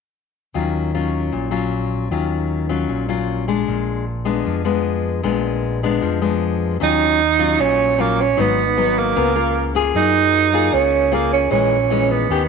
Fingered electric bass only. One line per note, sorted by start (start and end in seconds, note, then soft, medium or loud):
0.55 1.29 D#2 medium
1.33 2.07 A#1 medium
2.11 2.85 D#2 medium
2.89 3.64 A#1 medium
3.68 4.42 A#1 medium
4.46 5.20 F2 medium
5.24 5.98 A#1 medium
6.03 6.77 F2 medium
6.81 7.55 D#2 medium
7.60 8.34 A#1 medium
8.38 9.12 G#1 medium
9.17 9.90 C#2 medium
9.94 10.69 F#2 medium
10.73 11.47 C#2 medium
11.51 12.25 A#1 medium
12.29 12.48 D#2 medium